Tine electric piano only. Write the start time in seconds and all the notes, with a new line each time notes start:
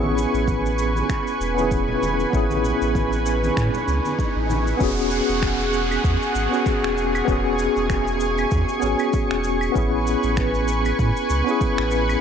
Already playing: B3 C#4 E4 G#4
1.54 B3 C#4
1.59 E4 G#4
2.30 B3 C#4
2.34 E4 G#4
4.77 B3 C#4
4.81 F#4 G#4
6.49 B3 C#4
6.53 F#4 G#4
7.25 B3 C#4
7.29 F#4 G#4
8.80 B3 C#4
8.84 F#4 G#4
9.72 B3 C#4
9.76 E4 G#4
11.44 B3 C#4
11.48 E4 G#4